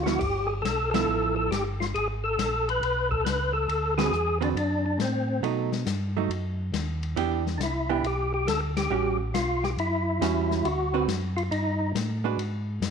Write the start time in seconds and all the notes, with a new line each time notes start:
Already playing: D2
0.04 F3 B3 E4 F#4, snare
0.19 G1 G4, kick, crash
0.47 G#4
0.62 B1 A4, snare, hi-hat pedal, ride
0.91 F3 B3 A4, snare, ride
0.95 E4
1.07 A1
1.36 A4
1.51 G1 G4, snare, hi-hat pedal, ride
1.80 F4, snare
1.94 G#1 G#4, ride
2.24 A4
2.37 A#1, snare, hi-hat pedal, ride
2.69 B4, ride
2.81 B1, ride
3.11 A4, kick
3.25 C#2 B4, snare, hi-hat pedal, ride
3.53 A4
3.68 D2, ride
3.98 D3 C4 F#4 G#4 B4, snare, ride
4.11 E2, hi-hat pedal
4.41 D3 C4 D4 F#4 B4, ride
4.55 F#2 D4, ride
4.86 D4
4.98 A2 C4, snare, hi-hat pedal, ride
5.42 B2 F#3 A3 D#4, ride
5.72 snare
5.86 G2, snare, hi-hat pedal, ride
6.17 F#3 A3 D#4
6.29 F#2, ride
6.72 D#2, snare, hi-hat pedal, ride
7.03 ride
7.16 E2 E3 B3 D4 G4, ride
7.47 snare
7.58 C2 D4, snare, hi-hat pedal, ride
7.63 E4
7.89 E3 B3 D4 G4
8.03 B1 G4, ride
8.34 G4
8.46 D2 A4, snare, hi-hat pedal, ride
8.77 G4, snare, ride
8.90 A1 G3 C#4 F#4
9.34 B1 F4, snare, hi-hat pedal, ride
9.64 G4, snare
9.77 F#2 E4, ride
10.20 E2 G3 C#4 F#4, snare, hi-hat pedal, ride
10.51 snare
10.64 D2 F#4, ride
10.94 D3 C4 F#4 B4
11.07 F#2, snare, hi-hat pedal, ride
11.37 F4, ride
11.51 G2 D#4, ride
11.95 A2, snare, hi-hat pedal, ride
12.24 G#3 D4 F#4 B4
12.37 G#2, ride
12.80 F#2, snare, hi-hat pedal, ride